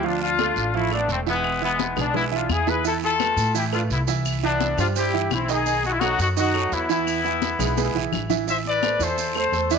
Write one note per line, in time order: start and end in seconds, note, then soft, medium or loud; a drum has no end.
0.00 0.50 D2 medium
0.00 0.32 F3 medium
0.00 0.33 F4 medium
0.00 high conga soft
0.00 long guiro medium
0.04 0.21 D4 medium
0.04 0.21 F4 medium
0.04 0.33 F5 medium
0.22 0.71 D4 medium
0.22 0.71 F4 loud
0.22 high conga soft
0.39 0.67 A3 medium
0.39 0.68 A4 medium
0.39 0.68 D5 medium
0.39 high conga medium
0.39 short guiro medium
0.39 claves medium
0.56 1.05 A1 medium
0.56 high conga soft
0.56 short guiro medium
0.74 0.89 F3 medium
0.74 0.92 A3 medium
0.74 0.92 E4 medium
0.74 0.89 F4 medium
0.74 0.89 F5 medium
0.74 high conga soft
0.74 long guiro medium
0.91 1.20 A3 medium
0.91 1.09 B3 medium
0.91 1.09 D4 medium
0.91 1.21 A4 medium
0.91 1.21 D5 medium
0.91 high conga soft
0.91 claves medium
1.08 1.91 E1 medium
1.08 1.18 A3 medium
1.08 1.18 C4 medium
1.08 high conga soft
1.08 short guiro medium
1.26 1.55 E3 medium
1.26 1.60 G#3 medium
1.26 1.60 B3 loud
1.26 1.56 E4 loud
1.26 1.56 E5 medium
1.26 high conga soft
1.26 short guiro medium
1.44 high conga soft
1.44 long guiro medium
1.44 claves medium
1.61 1.90 E3 medium
1.61 1.95 G#3 medium
1.61 1.96 B3 loud
1.61 1.91 E4 medium
1.61 1.91 E5 medium
1.61 high conga soft
1.79 high conga medium
1.79 short guiro medium
1.96 2.46 B1 medium
1.96 2.11 G#3 medium
1.96 2.15 B3 medium
1.96 2.16 D4 loud
1.96 2.11 G#4 medium
1.96 2.12 B4 medium
1.96 high conga soft
1.96 low conga medium
1.96 short guiro medium
1.96 claves medium
2.14 2.29 G#3 medium
2.14 2.24 B3 medium
2.14 2.24 E4 loud
2.14 2.29 G#4 medium
2.14 2.29 B4 medium
2.14 high conga soft
2.14 low conga medium
2.14 long guiro medium
2.31 2.61 E3 medium
2.31 2.50 D4 medium
2.31 2.61 E4 medium
2.31 2.50 F4 medium
2.31 2.61 E5 medium
2.31 high conga soft
2.49 3.32 E2 medium
2.49 2.68 E4 medium
2.49 2.68 G#4 loud
2.49 high conga medium
2.49 short guiro medium
2.49 claves medium
2.67 2.81 E3 medium
2.67 2.82 E4 medium
2.67 2.86 G#4 medium
2.67 2.86 B4 loud
2.67 2.82 E5 medium
2.67 high conga medium
2.67 short guiro medium
2.84 3.14 E3 medium
2.84 3.14 E4 medium
2.84 2.94 E4 medium
2.84 2.94 A4 loud
2.84 3.14 E5 medium
2.84 high conga soft
2.84 long guiro medium
2.84 maracas medium
3.02 3.52 F4 medium
3.02 3.52 A4 loud
3.02 high conga soft
3.02 maracas soft
3.20 3.49 A3 medium
3.20 3.49 A4 medium
3.20 3.49 B4 medium
3.20 high conga medium
3.20 short guiro medium
3.20 claves medium
3.20 maracas soft
3.37 3.86 A2 loud
3.37 high conga soft
3.37 short guiro medium
3.37 maracas medium
3.54 3.69 E3 medium
3.54 3.69 E4 loud
3.54 3.64 E4 medium
3.54 3.64 G4 medium
3.54 3.69 E5 medium
3.54 high conga soft
3.54 long guiro medium
3.54 maracas loud
3.73 4.02 A3 medium
3.73 3.82 D4 medium
3.73 3.81 F4 medium
3.73 4.02 A4 medium
3.73 4.02 B4 medium
3.73 high conga soft
3.73 claves medium
3.73 maracas soft
3.90 4.72 C2 medium
3.90 3.99 B3 medium
3.90 3.99 E4 medium
3.90 high conga soft
3.90 short guiro medium
3.90 maracas soft
4.07 4.37 E3 medium
4.07 4.37 E4 loud
4.07 4.37 E5 medium
4.07 high conga soft
4.07 short guiro medium
4.07 maracas medium
4.25 high conga soft
4.25 long guiro medium
4.25 claves medium
4.25 maracas medium
4.43 4.72 E3 medium
4.43 4.76 B3 medium
4.43 4.76 D4 loud
4.43 4.72 E4 medium
4.43 4.73 E5 medium
4.43 high conga soft
4.43 maracas soft
4.61 high conga loud
4.61 short guiro medium
4.61 maracas soft
4.77 5.27 G2 loud
4.77 4.93 G3 medium
4.77 4.87 D4 medium
4.77 4.87 F4 medium
4.77 4.93 G4 medium
4.77 4.93 C5 medium
4.77 high conga soft
4.77 low conga medium
4.77 short guiro medium
4.77 claves medium
4.77 maracas medium
4.96 5.10 G3 medium
4.96 5.30 E4 medium
4.96 5.11 G4 medium
4.96 5.29 G4 loud
4.96 5.11 C5 medium
4.96 high conga soft
4.96 long guiro medium
4.96 maracas loud
5.13 5.43 E3 medium
5.13 5.43 E4 medium
5.13 5.43 E5 medium
5.13 high conga soft
5.13 maracas soft
5.30 6.13 B1 loud
5.30 5.50 C4 medium
5.30 5.50 E4 medium
5.30 high conga medium
5.30 short guiro medium
5.30 claves medium
5.30 maracas soft
5.48 5.63 D#3 loud
5.48 5.63 D#4 medium
5.48 5.85 D#4 medium
5.48 5.85 G#4 loud
5.48 5.64 D#5 medium
5.48 short guiro medium
5.48 maracas medium
5.66 5.95 D#3 medium
5.66 5.95 D#4 medium
5.66 5.95 D#5 medium
5.66 high conga soft
5.66 long guiro medium
5.66 maracas medium
5.84 5.92 D#4 medium
5.84 5.91 F#4 loud
5.84 high conga soft
5.84 maracas soft
5.92 5.99 E4 loud
5.99 6.30 F#3 medium
5.99 6.19 D#4 medium
5.99 6.19 F#4 loud
5.99 6.30 F#4 medium
5.99 6.31 A4 medium
5.99 high conga loud
5.99 short guiro medium
5.99 claves medium
5.99 maracas soft
6.19 6.68 F#2 medium
6.19 6.28 D#4 medium
6.19 6.28 F#4 loud
6.19 high conga soft
6.19 short guiro medium
6.19 maracas medium
6.37 6.51 D#3 medium
6.37 6.51 D#4 medium
6.37 6.70 D#4 medium
6.37 6.70 F#4 loud
6.37 6.51 D#5 loud
6.37 high conga soft
6.37 long guiro medium
6.37 maracas loud
6.54 6.83 F#3 medium
6.54 6.83 F#4 medium
6.54 6.83 A4 medium
6.54 high conga soft
6.54 claves medium
6.54 maracas soft
6.71 7.54 E2 medium
6.71 6.90 B3 medium
6.71 6.89 E4 loud
6.71 high conga soft
6.71 short guiro medium
6.71 maracas soft
6.89 7.18 E3 loud
6.89 8.09 B3 medium
6.89 7.18 E4 medium
6.89 8.09 E4 loud
6.89 7.18 E5 loud
6.89 high conga soft
6.89 short guiro medium
6.89 maracas medium
7.07 high conga soft
7.07 long guiro medium
7.07 claves medium
7.07 maracas medium
7.24 7.53 E3 medium
7.24 7.54 E4 medium
7.24 7.54 E5 medium
7.24 high conga soft
7.24 maracas soft
7.42 high conga loud
7.42 short guiro medium
7.42 maracas soft
7.59 7.92 B1 loud
7.59 7.74 G#3 medium
7.59 7.74 G#4 medium
7.59 7.74 B4 medium
7.59 high conga soft
7.59 low conga medium
7.59 short guiro medium
7.59 claves medium
7.59 maracas medium
7.77 7.92 G#3 medium
7.77 7.92 G#4 medium
7.77 7.92 B4 medium
7.77 high conga medium
7.77 long guiro medium
7.77 maracas loud
7.94 8.11 B1 medium
7.94 8.24 E3 medium
7.94 8.24 E4 medium
7.94 8.24 E5 medium
7.94 maracas soft
8.12 8.94 A1 medium
8.12 low conga medium
8.12 short guiro medium
8.12 claves medium
8.12 maracas soft
8.30 8.44 E3 loud
8.30 8.44 E4 medium
8.30 8.45 E5 medium
8.30 low conga medium
8.30 short guiro medium
8.30 maracas medium
8.47 8.76 E3 medium
8.47 8.76 E4 medium
8.47 8.57 C5 medium
8.47 8.77 E5 medium
8.47 8.57 E5 loud
8.47 high conga soft
8.47 long guiro medium
8.47 maracas medium
8.65 8.99 B4 medium
8.65 8.99 D5 loud
8.65 high conga soft
8.65 maracas soft
8.83 8.97 A3 medium
8.83 8.97 A4 medium
8.83 8.97 C5 medium
8.83 high conga loud
8.83 short guiro medium
8.83 claves medium
8.83 maracas soft
8.99 9.49 E2 loud
8.99 9.29 E3 medium
8.99 9.29 E4 medium
8.99 9.36 A4 medium
8.99 9.36 C5 loud
8.99 9.29 E5 medium
8.99 high conga soft
8.99 short guiro medium
8.99 maracas medium
9.18 high conga soft
9.18 long guiro medium
9.18 maracas loud
9.35 9.50 A3 medium
9.35 9.50 A4 medium
9.35 9.69 A4 medium
9.35 9.50 C5 medium
9.35 9.69 C5 medium
9.35 high conga soft
9.35 claves medium
9.35 maracas soft
9.52 9.79 E2 medium
9.52 9.67 A3 medium
9.52 9.67 A4 medium
9.52 9.68 C5 medium
9.52 high conga soft
9.52 short guiro medium
9.52 maracas soft
9.70 9.79 E3 medium
9.70 9.79 E4 loud
9.70 9.79 B4 medium
9.70 9.79 D5 medium
9.70 9.79 E5 medium
9.70 high conga soft
9.70 short guiro medium
9.70 maracas medium